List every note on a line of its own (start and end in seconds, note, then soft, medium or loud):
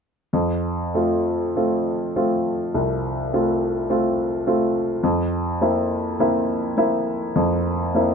0.33 0.92 F2 soft
0.94 1.50 A3 soft
0.94 1.51 C4 soft
0.94 1.51 F4 soft
1.56 2.11 A3 soft
1.56 2.11 C4 soft
1.56 2.11 F4 soft
2.16 2.70 A3 soft
2.16 2.70 C4 soft
2.16 2.70 F4 soft
2.74 3.30 C2 soft
3.33 3.85 A3 soft
3.33 3.85 C4 soft
3.33 3.85 F4 soft
3.90 4.41 A3 soft
3.90 4.42 C4 soft
3.90 4.42 F4 soft
4.47 4.99 A3 soft
4.47 4.99 C4 soft
4.47 4.99 F4 soft
5.03 5.58 F2 soft
5.61 6.14 A#3 soft
5.61 6.14 C4 soft
5.61 6.14 E4 soft
6.20 6.72 A#3 soft
6.20 6.72 C4 soft
6.20 6.72 E4 soft
6.77 7.30 A#3 soft
6.77 7.30 C4 soft
6.77 7.30 E4 soft
7.36 7.92 F2 soft
7.95 8.14 A#3 soft
7.95 8.14 C4 soft
7.95 8.14 E4 soft